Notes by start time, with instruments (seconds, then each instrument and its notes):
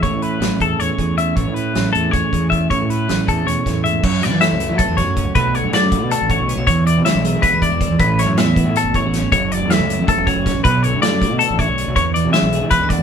Already playing: clean electric guitar E3 B3
0.03 fingered electric bass A1, clean electric guitar A2 C#4 C#5, kick, closed hi-hat
0.11 fingered electric bass A2
0.22 clean electric guitar E4 B4, closed hi-hat
0.40 fingered electric bass A1, clean electric guitar C#4, snare, closed hi-hat
0.60 fingered electric bass E2, clean electric guitar A3 G#4 A4, kick, closed hi-hat
0.79 fingered electric bass E2, clean electric guitar C#4 C#5, closed hi-hat
0.98 fingered electric bass E2, clean electric guitar E2 G#4, kick, closed hi-hat
1.18 clean electric guitar C#4 E5, closed hi-hat
1.36 fingered electric bass A1, clean electric guitar A2 C#4 C#5, kick, closed hi-hat
1.47 fingered electric bass A2
1.54 clean electric guitar E4 B4, closed hi-hat
1.75 fingered electric bass A1, clean electric guitar C#4, snare, closed hi-hat
1.93 fingered electric bass E2, clean electric guitar A3 G#4 A4, closed hi-hat
2.11 fingered electric bass E2, clean electric guitar C#4 C#5, kick, closed hi-hat
2.32 clean electric guitar E2 G#4, fingered electric bass E2, kick, closed hi-hat
2.50 clean electric guitar C#4 E5, kick, closed hi-hat
2.70 fingered electric bass A1, clean electric guitar A2 C#4 C#5, kick, closed hi-hat
2.82 fingered electric bass A2
2.90 clean electric guitar E4 B4, closed hi-hat
3.08 fingered electric bass A1, clean electric guitar C#4, snare, closed hi-hat
3.27 fingered electric bass E2, clean electric guitar A3 G#4 A4, kick, closed hi-hat
3.46 fingered electric bass E2, clean electric guitar B2 C#5, closed hi-hat
3.65 fingered electric bass E2, clean electric guitar A2, kick, snare, closed hi-hat
3.83 clean electric guitar G#2 E5, closed hi-hat
4.02 clean electric guitar F#2 C#5, fingered electric bass F#2, kick, crash
4.21 clean electric guitar F#3 D5, snare, closed hi-hat
4.31 fingered electric bass E3
4.40 clean electric guitar A3 E5, snare, closed hi-hat
4.52 fingered electric bass C#2
4.60 clean electric guitar E4, closed hi-hat
4.70 fingered electric bass F#3
4.78 clean electric guitar B3 A4, kick, closed hi-hat
4.88 fingered electric bass E2, clean electric guitar C#4
4.97 clean electric guitar F#4 C#5, kick, snare, closed hi-hat
5.06 fingered electric bass F#2
5.17 clean electric guitar C#4, kick, closed hi-hat
5.24 fingered electric bass C#2
5.35 fingered electric bass B1, clean electric guitar B2 D3 A3 D4 F#4 B4, kick, closed hi-hat
5.53 clean electric guitar D3 C#5, closed hi-hat
5.64 fingered electric bass G#2
5.73 clean electric guitar A3 D5, snare, closed hi-hat
5.84 fingered electric bass F#2
5.92 clean electric guitar F#4, kick, closed hi-hat
6.03 fingered electric bass B2
6.11 clean electric guitar D4 A4, closed hi-hat
6.21 fingered electric bass A1
6.30 clean electric guitar F#4 C#5, kick, closed hi-hat
6.40 fingered electric bass B1
6.48 clean electric guitar B3, closed hi-hat
6.57 fingered electric bass B1, clean electric guitar D4
6.67 fingered electric bass E2, clean electric guitar E2 C#5, kick, closed hi-hat
6.86 clean electric guitar E3 D5, closed hi-hat
6.97 fingered electric bass C#3
7.05 clean electric guitar G#3 E5, snare, closed hi-hat
7.15 fingered electric bass B1
7.25 clean electric guitar G#4, closed hi-hat
7.34 fingered electric bass E3
7.42 clean electric guitar B3 B4, kick, closed hi-hat
7.52 fingered electric bass D2, clean electric guitar D4
7.62 clean electric guitar E4 D5, kick, closed hi-hat
7.72 fingered electric bass E2, clean electric guitar F#4
7.81 clean electric guitar D4, kick, closed hi-hat
7.90 fingered electric bass E2
7.99 fingered electric bass A1, clean electric guitar A2 B4, kick, closed hi-hat
8.19 clean electric guitar E3 C#5, snare, closed hi-hat
8.27 fingered electric bass F#2
8.37 clean electric guitar B3 E5, snare, closed hi-hat
8.45 fingered electric bass E2
8.56 clean electric guitar F#4, kick, closed hi-hat
8.64 fingered electric bass A2
8.76 clean electric guitar C#4 A4, closed hi-hat
8.83 fingered electric bass F#1
8.94 clean electric guitar E4 C#5, kick, closed hi-hat
9.02 fingered electric bass A1
9.07 clean electric guitar F#4
9.13 snare, closed hi-hat
9.18 clean electric guitar C#4
9.22 fingered electric bass G#1
9.32 fingered electric bass F#1, clean electric guitar F#2 C#5, kick, closed hi-hat
9.52 clean electric guitar F#3 D5, closed hi-hat
9.60 fingered electric bass E2
9.70 clean electric guitar A3 E5, snare, closed hi-hat
9.79 fingered electric bass C#2
9.90 clean electric guitar E4, closed hi-hat
9.98 fingered electric bass F#2
10.08 clean electric guitar C#4 A4, kick, closed hi-hat
10.17 fingered electric bass E1
10.27 clean electric guitar F#4 C#5, kick, closed hi-hat
10.35 fingered electric bass F#1
10.46 clean electric guitar C#4, kick, snare, closed hi-hat
10.55 fingered electric bass A1
10.64 fingered electric bass B1, clean electric guitar B2 B4, kick, closed hi-hat
10.83 clean electric guitar D3 C#5, closed hi-hat
10.94 fingered electric bass G#2
11.02 clean electric guitar A3 D5, snare, closed hi-hat
11.12 fingered electric bass F#2
11.22 clean electric guitar F#4, kick, closed hi-hat
11.31 fingered electric bass B2
11.39 clean electric guitar D4 A4, closed hi-hat
11.50 fingered electric bass A1
11.59 clean electric guitar E4 C#5, kick, closed hi-hat
11.68 fingered electric bass B1, clean electric guitar F#4
11.78 clean electric guitar D4, closed hi-hat
11.88 fingered electric bass B1
11.96 fingered electric bass E2, clean electric guitar E2 C#5, kick, closed hi-hat
12.14 clean electric guitar E3 D5, closed hi-hat
12.25 fingered electric bass C#3
12.33 clean electric guitar G#3 E5, snare, closed hi-hat
12.42 fingered electric bass B1
12.52 clean electric guitar G#4, closed hi-hat
12.61 fingered electric bass E3
12.71 clean electric guitar B3 B4, kick, snare, closed hi-hat
12.80 fingered electric bass D2, clean electric guitar D4
12.89 clean electric guitar D5, kick, closed hi-hat
12.93 clean electric guitar F#4
12.99 fingered electric bass E2